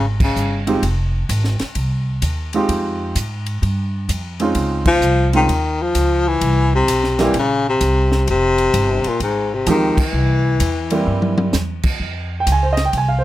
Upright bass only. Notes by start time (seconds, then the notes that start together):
Already playing: G#1
0.36 G1
0.82 F1
1.29 G#1
1.61 muted upright bass stroke
1.75 C2
2.22 D#2
2.69 F2
3.15 G#2
3.62 G2
4.09 F2
4.55 C#2
5.01 C2
5.49 D#2
5.95 C#2
6.41 C2
6.88 B1
7.34 A#1
7.81 C2
8.27 F1
8.74 G1
9.05 muted upright bass stroke
9.20 G#1
9.67 D#2
9.97 muted upright bass stroke
10.13 C2
10.60 E2
11.07 G2
11.54 E2
12.00 F2
12.47 C#2
12.93 C2